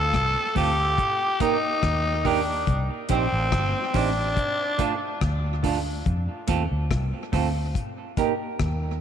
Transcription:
Already playing: fingered electric bass D2, tenor saxophone A4
0.14 fingered electric bass C2, kick, cross-stick
0.55 fingered electric bass D2, clean electric guitar A3 C4 F4 A4, tenor saxophone G4, kick, open hi-hat
0.98 kick, hi-hat pedal
1.40 clean electric guitar A#3 D#4 G4 A#4, tenor saxophone D#4, kick, closed hi-hat
1.83 fingered electric bass D#2, kick, cross-stick
2.24 clean electric guitar A#3 D#4 G4 A#4, tenor saxophone D4, kick, open hi-hat
2.67 fingered electric bass C2, kick, hi-hat pedal
3.09 fingered electric bass A#1, clean electric guitar C4 D#4 G4 C5, tenor saxophone C4, kick, closed hi-hat
3.32 fingered electric bass A1
3.52 fingered electric bass G1, kick, cross-stick
3.93 fingered electric bass A1, clean electric guitar C4 D#4 G4 C5, tenor saxophone D4, kick, cross-stick, open hi-hat
4.37 kick, hi-hat pedal
4.78 clean electric guitar A3 D4 F4 A4, kick, closed hi-hat
5.21 fingered electric bass D2, kick, cross-stick
5.63 clean electric guitar A3 D4 F4 A4, kick, open hi-hat
6.06 fingered electric bass F2, kick, hi-hat pedal
6.47 fingered electric bass D#2, clean electric guitar A3 C4 F4 A4, kick, closed hi-hat
6.71 fingered electric bass D2
6.91 fingered electric bass C2, kick, cross-stick
7.32 fingered electric bass D2, clean electric guitar A3 C4 F4 A4, kick, cross-stick, open hi-hat
7.75 kick, hi-hat pedal
8.17 clean electric guitar A#3 D#4 G4 A#4, kick, closed hi-hat
8.60 fingered electric bass D#2, kick, cross-stick

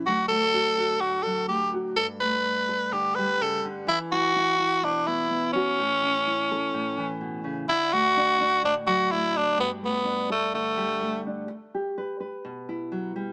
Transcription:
Already playing: nylon-string guitar A4
0.06 nylon-string guitar D3 F#3 A3, tenor saxophone F#4
0.29 nylon-string guitar A3, tenor saxophone A4
0.54 nylon-string guitar F#4
0.78 nylon-string guitar F#4
1.01 nylon-string guitar A2, tenor saxophone F#4
1.23 nylon-string guitar F#3, tenor saxophone A4
1.49 nylon-string guitar A3, tenor saxophone G4
1.74 nylon-string guitar F#4
1.97 nylon-string guitar G2, tenor saxophone A4
2.20 nylon-string guitar A3, tenor saxophone B4
2.69 nylon-string guitar A4
2.92 nylon-string guitar D3, tenor saxophone G4
3.15 nylon-string guitar G3, tenor saxophone B4
3.40 nylon-string guitar C#3, tenor saxophone A4
3.65 nylon-string guitar D3
3.87 nylon-string guitar E3, tenor saxophone E4
4.12 nylon-string guitar E4, tenor saxophone F#4
4.36 nylon-string guitar E4
4.60 nylon-string guitar E4
4.83 nylon-string guitar B2, tenor saxophone D4
5.07 nylon-string guitar B3, tenor saxophone E4
5.30 nylon-string guitar B3
5.53 tenor saxophone C#4, nylon-string guitar F#4
5.79 nylon-string guitar A2
6.03 nylon-string guitar C#4
6.27 nylon-string guitar E4
6.51 nylon-string guitar A4
6.74 nylon-string guitar A2
6.98 nylon-string guitar E3
7.21 nylon-string guitar B2
7.44 nylon-string guitar C#3
7.69 nylon-string guitar D3, tenor saxophone E4
7.93 nylon-string guitar A3, tenor saxophone F#4
8.17 nylon-string guitar D4
8.41 nylon-string guitar D4
8.63 nylon-string guitar A2, tenor saxophone D4
8.87 nylon-string guitar F#3, tenor saxophone F#4
9.12 nylon-string guitar A3, tenor saxophone E4
9.34 tenor saxophone D4, muted nylon-string guitar stroke
9.57 nylon-string guitar G2, tenor saxophone B3
9.83 nylon-string guitar A3, tenor saxophone B3
10.05 nylon-string guitar D4
10.30 tenor saxophone A3, nylon-string guitar A4
10.54 nylon-string guitar D3, tenor saxophone A3
10.77 nylon-string guitar G3
11.02 nylon-string guitar A3
11.27 nylon-string guitar D4
11.48 muted nylon-string guitar stroke
11.74 nylon-string guitar G4
11.98 nylon-string guitar B4
12.20 nylon-string guitar B4
12.45 nylon-string guitar B2
12.69 nylon-string guitar E4
12.92 nylon-string guitar F#3
13.16 nylon-string guitar G3

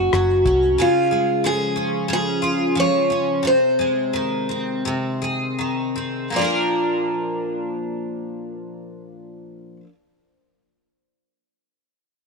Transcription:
Already playing: twelve-string acoustic guitar F#2 F#3 A#3 C#4 F#4, steel-string acoustic guitar F#4
0.13 fingered electric bass F#1, twelve-string acoustic guitar F#3, cross-stick, shaker
0.30 shaker
0.46 fingered electric bass C2, twelve-string acoustic guitar C#4, kick
0.62 shaker
0.78 twelve-string acoustic guitar C#3, steel-string acoustic guitar F4
1.11 twelve-string acoustic guitar G#3
1.44 twelve-string acoustic guitar F3, steel-string acoustic guitar G#4
1.76 twelve-string acoustic guitar C#4
2.08 twelve-string acoustic guitar C#3
2.13 steel-string acoustic guitar G#4
2.42 twelve-string acoustic guitar F4
2.75 twelve-string acoustic guitar F3
2.80 steel-string acoustic guitar C#5
3.10 twelve-string acoustic guitar C#4
3.43 twelve-string acoustic guitar C3
3.47 steel-string acoustic guitar C5
3.79 twelve-string acoustic guitar G#3
4.13 twelve-string acoustic guitar D#3
4.49 twelve-string acoustic guitar C4
4.85 twelve-string acoustic guitar C3
5.22 twelve-string acoustic guitar G#4
5.59 twelve-string acoustic guitar D#3
5.96 twelve-string acoustic guitar C4
6.30 twelve-string acoustic guitar A#2 F3
6.36 twelve-string acoustic guitar A#3 D4, steel-string acoustic guitar D5
6.42 twelve-string acoustic guitar A#4

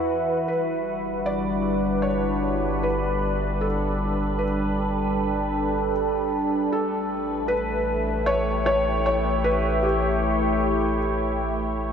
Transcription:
Already playing: analog synth bass E2, ambient pad E3 E4 F#4 B4, felt piano B4
0.48 analog synth bass G1, ambient pad G3, felt piano B4
0.74 ambient pad D4
1.26 felt piano D5
2.02 felt piano C#5
2.35 ambient pad A4
2.83 felt piano B4
3.61 felt piano A4
4.39 felt piano B4
6.71 analog synth bass A1, ambient pad A3, felt piano A4
7.09 ambient pad E4
7.48 felt piano B4
7.55 ambient pad G4
7.91 ambient pad C#5
8.26 felt piano C#5
8.66 felt piano C#5
9.06 felt piano C#5
9.44 felt piano B4
9.83 felt piano G4

